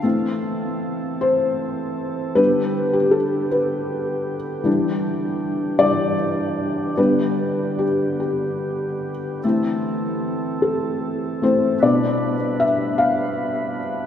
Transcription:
X:1
M:6/8
L:1/16
Q:3/8=51
K:Am
V:1 name="Felt piano"
z6 c6 | B3 G A2 B4 z2 | z6 d6 | B4 G2 G4 z2 |
z6 A4 c2 | d4 e2 f4 z2 |]
V:2 name="Felt piano"
[A,CE]12 | [G,B,D]6 z6 | [E,G,D]6 [E,G,D]2 z4 | [G,B,D]12 |
[A,CE]8- [A,CE]2 [A,CE]2 | [B,,B,D]2 z8 z2 |]
V:3 name="Pipe organ"
A12 | G12- | G12- | G12 |
A12 | [B,,B]12 |]
V:4 name="Pipe organ"
[E,C]12 | [D,B,]12 | [E,D]12 | [D,B,]12 |
[E,C]12 | [G,D]12 |]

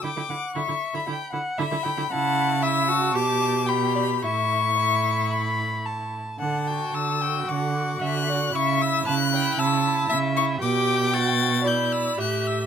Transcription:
X:1
M:4/4
L:1/16
Q:1/4=114
K:Amix
V:1 name="Violin"
d'4 c'3 b3 z2 b4 | a4 e'4 d'4 b4 | c'12- c'2 z2 | a4 e'4 d'4 f'4 |
c'2 e'2 f'4 e'4 e'2 c'2 | d'4 a'4 g'2 e'2 f'2 e'2 |]
V:2 name="Violin"
g2 f2 e4 g2 f2 e2 g2 | f4 e2 a6 g2 d2 | e4 e4 b4 a4 | f2 g2 a2 g2 f4 e2 d2 |
e4 a2 g2 a4 e4 | g8 d4 e4 |]
V:3 name="Viola"
E E E z E E z E E z E z E E E E | E4 E2 F2 G4 G4 | E12- E2 z2 | z2 F4 F4 F4 F2 |
E2 E4 E4 E4 E2 | G4 F4 E4 G4 |]
V:4 name="Cello" clef=bass
D, D, D, z D, D, z D, D, z D, z D, D, D, D, | C,8 B,,8 | A,,12- A,,2 z2 | D,4 D,4 D,4 D,4 |
C,4 C,4 C,4 C,4 | B,,12 A,,4 |]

